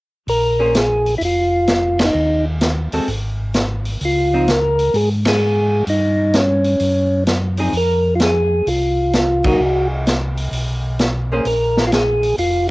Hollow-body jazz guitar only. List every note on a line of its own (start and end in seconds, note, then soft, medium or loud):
0.59 0.74 A#3 soft
0.59 0.73 C#4 soft
0.59 0.74 G#4 medium
0.59 0.74 C5 medium
2.93 3.07 G#3 soft
2.93 3.07 C4 medium
2.93 3.07 F#4 medium
2.93 3.07 A4 medium
4.33 4.47 F3 soft
4.33 4.47 C4 medium
4.33 4.47 D#4 medium
7.58 7.72 F3 medium
7.58 7.73 C4 soft
7.58 7.73 D#4 medium
7.58 7.73 G#4 medium
9.45 9.58 F#3 medium
9.45 9.59 A#3 medium
9.45 9.59 D#4 medium
11.32 11.45 A#3 medium
11.32 11.45 C#4 medium
11.32 11.45 G#4 medium
11.32 11.45 C5 medium